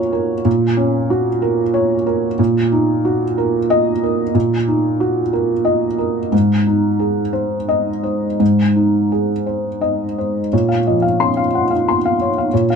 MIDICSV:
0, 0, Header, 1, 2, 480
1, 0, Start_track
1, 0, Key_signature, -5, "minor"
1, 0, Tempo, 645161
1, 338, Time_signature, 6, 3, 24, 8
1, 1775, Tempo, 656455
1, 4655, Tempo, 682594
1, 5615, Tempo, 708383
1, 7535, Tempo, 662983
1, 9152, End_track
2, 0, Start_track
2, 0, Title_t, "Felt piano"
2, 0, Program_c, 0, 0
2, 0, Control_c, 0, 64, 127
2, 0, Note_on_c, 0, 46, 55
2, 0, Note_on_c, 0, 61, 40
2, 0, Note_on_c, 0, 66, 45
2, 0, Note_on_c, 0, 70, 46
2, 0, Note_on_c, 0, 73, 61
2, 93, Note_off_c, 0, 70, 0
2, 93, Note_on_c, 0, 70, 46
2, 234, Note_off_c, 0, 73, 0
2, 305, Note_off_c, 0, 46, 0
2, 334, Note_on_c, 0, 46, 60
2, 353, Control_c, 0, 64, 0
2, 355, Note_off_c, 0, 66, 0
2, 359, Note_off_c, 0, 61, 0
2, 482, Note_off_c, 0, 70, 0
2, 482, Control_c, 0, 64, 127
2, 572, Note_on_c, 0, 61, 46
2, 820, Note_on_c, 0, 66, 48
2, 958, Note_off_c, 0, 61, 0
2, 1056, Note_on_c, 0, 70, 50
2, 1198, Note_off_c, 0, 66, 0
2, 1293, Note_on_c, 0, 73, 54
2, 1437, Note_off_c, 0, 70, 0
2, 1536, Note_on_c, 0, 70, 48
2, 1678, Note_off_c, 0, 73, 0
2, 1744, Note_off_c, 0, 46, 0
2, 1777, Note_off_c, 0, 70, 0
2, 1778, Note_on_c, 0, 46, 61
2, 1789, Control_c, 0, 64, 0
2, 1899, Control_c, 0, 64, 127
2, 2019, Note_on_c, 0, 63, 47
2, 2260, Note_on_c, 0, 66, 47
2, 2400, Note_off_c, 0, 63, 0
2, 2500, Note_on_c, 0, 70, 47
2, 2640, Note_off_c, 0, 66, 0
2, 2737, Note_on_c, 0, 75, 67
2, 2878, Note_off_c, 0, 70, 0
2, 2980, Note_on_c, 0, 70, 45
2, 3114, Note_off_c, 0, 75, 0
2, 3179, Note_off_c, 0, 46, 0
2, 3208, Note_on_c, 0, 46, 57
2, 3221, Control_c, 0, 64, 0
2, 3335, Control_c, 0, 64, 127
2, 3354, Note_off_c, 0, 70, 0
2, 3449, Note_on_c, 0, 63, 39
2, 3688, Note_on_c, 0, 66, 44
2, 3830, Note_off_c, 0, 63, 0
2, 3928, Note_on_c, 0, 70, 46
2, 4071, Note_off_c, 0, 66, 0
2, 4159, Note_on_c, 0, 75, 48
2, 4313, Note_off_c, 0, 70, 0
2, 4406, Note_on_c, 0, 70, 41
2, 4552, Note_off_c, 0, 75, 0
2, 4625, Note_off_c, 0, 46, 0
2, 4652, Note_off_c, 0, 70, 0
2, 4652, Note_on_c, 0, 44, 50
2, 4667, Control_c, 0, 64, 0
2, 4780, Control_c, 0, 64, 127
2, 4896, Note_on_c, 0, 63, 37
2, 5126, Note_on_c, 0, 68, 37
2, 5276, Note_off_c, 0, 63, 0
2, 5361, Note_on_c, 0, 72, 38
2, 5513, Note_off_c, 0, 68, 0
2, 5612, Note_on_c, 0, 75, 50
2, 5754, Note_off_c, 0, 72, 0
2, 5849, Note_on_c, 0, 72, 34
2, 6000, Note_off_c, 0, 75, 0
2, 6070, Note_off_c, 0, 44, 0
2, 6093, Note_on_c, 0, 44, 40
2, 6111, Control_c, 0, 64, 0
2, 6214, Control_c, 0, 64, 127
2, 6239, Note_off_c, 0, 72, 0
2, 6339, Note_on_c, 0, 63, 29
2, 6583, Note_on_c, 0, 68, 33
2, 6719, Note_off_c, 0, 63, 0
2, 6817, Note_on_c, 0, 72, 32
2, 6961, Note_off_c, 0, 68, 0
2, 7054, Note_on_c, 0, 75, 35
2, 7201, Note_off_c, 0, 72, 0
2, 7305, Note_on_c, 0, 72, 34
2, 7441, Note_off_c, 0, 75, 0
2, 7504, Note_off_c, 0, 44, 0
2, 7539, Note_off_c, 0, 72, 0
2, 7539, Note_on_c, 0, 73, 42
2, 7541, Note_on_c, 0, 46, 49
2, 7548, Control_c, 0, 64, 0
2, 7652, Note_on_c, 0, 77, 43
2, 7662, Control_c, 0, 64, 127
2, 7733, Note_off_c, 0, 73, 0
2, 7785, Note_on_c, 0, 75, 34
2, 7786, Note_on_c, 0, 53, 36
2, 7850, Note_off_c, 0, 77, 0
2, 7896, Note_on_c, 0, 77, 42
2, 7904, Note_off_c, 0, 75, 0
2, 8025, Note_on_c, 0, 84, 50
2, 8028, Note_on_c, 0, 61, 38
2, 8093, Note_off_c, 0, 77, 0
2, 8148, Note_on_c, 0, 77, 42
2, 8171, Note_off_c, 0, 53, 0
2, 8217, Note_off_c, 0, 84, 0
2, 8276, Note_on_c, 0, 78, 36
2, 8338, Note_off_c, 0, 77, 0
2, 8390, Note_off_c, 0, 78, 0
2, 8392, Note_on_c, 0, 77, 43
2, 8410, Note_off_c, 0, 61, 0
2, 8521, Note_on_c, 0, 84, 44
2, 8579, Note_off_c, 0, 77, 0
2, 8644, Note_on_c, 0, 77, 44
2, 8702, Note_off_c, 0, 84, 0
2, 8759, Note_on_c, 0, 73, 40
2, 8823, Note_off_c, 0, 77, 0
2, 8880, Note_on_c, 0, 77, 41
2, 8940, Note_off_c, 0, 73, 0
2, 8953, Note_off_c, 0, 46, 0
2, 8991, Control_c, 0, 64, 0
2, 8991, Note_on_c, 0, 73, 42
2, 8992, Note_on_c, 0, 46, 48
2, 9059, Note_off_c, 0, 77, 0
2, 9108, Control_c, 0, 64, 127
2, 9112, Note_on_c, 0, 77, 44
2, 9152, Note_off_c, 0, 46, 0
2, 9152, Note_off_c, 0, 73, 0
2, 9152, Note_off_c, 0, 77, 0
2, 9152, End_track
0, 0, End_of_file